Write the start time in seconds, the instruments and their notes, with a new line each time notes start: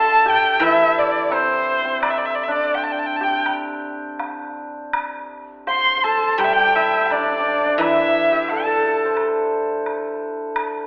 Already playing: hammered dulcimer D4 E4 A4, erhu A5, dizi A5
0.26 hammered dulcimer G4, erhu G5
0.60 guzheng E3, hammered dulcimer E4, dizi E5, erhu E5, high woodblock
0.97 dizi D5, erhu D5
1.30 hammered dulcimer C4, erhu C5, dizi C5, high woodblock
1.85 hammered dulcimer C4
2.02 erhu D5, high woodblock
2.10 erhu E5
2.18 erhu D5
2.25 erhu E5
2.35 erhu D5
2.43 erhu E5
2.48 hammered dulcimer D4, erhu D5
2.53 dizi D5
2.74 erhu G5, low woodblock
2.83 erhu A5
2.92 erhu G5
2.99 erhu A5
3.06 erhu G5
3.16 erhu A5
3.21 hammered dulcimer G4, erhu G5, dizi G5
3.46 high woodblock
4.19 high woodblock, low woodblock
4.93 high woodblock
5.67 hammered dulcimer C5, dizi C6, erhu C6, low woodblock
5.97 hammered dulcimer C5
6.04 hammered dulcimer A4, erhu A5
6.38 guzheng G3, hammered dulcimer G4, erhu G5, dizi G5, high woodblock
6.44 erhu E5
6.53 hammered dulcimer G4, erhu G5, dizi G5
6.76 hammered dulcimer E4, erhu E5
7.06 dizi E5
7.11 hammered dulcimer D4, erhu D5, dizi D5, high woodblock
7.19 hammered dulcimer D4
7.26 hammered dulcimer D4
7.32 hammered dulcimer D4
7.40 hammered dulcimer D4
7.48 hammered dulcimer D4
7.66 hammered dulcimer D4, dizi D5
7.78 guzheng E3, hammered dulcimer E4, erhu E5, dizi E5, high woodblock
8.32 hammered dulcimer G4
8.48 hammered dulcimer A4, dizi A5, erhu A5, low woodblock
8.59 hammered dulcimer A4
8.66 hammered dulcimer A4
8.75 hammered dulcimer A4
8.83 hammered dulcimer A4
8.87 hammered dulcimer A4
9.05 hammered dulcimer C5
9.17 high woodblock
9.86 high woodblock
10.56 high woodblock